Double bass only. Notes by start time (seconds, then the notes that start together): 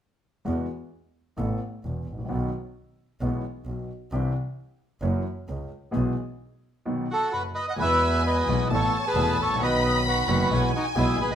0.46 E2
1.39 A1
1.85 E1
2.07 A1
2.30 B1
3.21 B1
3.65 B1
4.12 C2
5.02 F#1
5.49 C#2
5.94 B1
7.78 E2
8.47 B1
8.69 A1
9.15 E1
9.38 A1
9.60 B1
10.27 F#1
10.50 B1
10.96 B1
11.19 A#1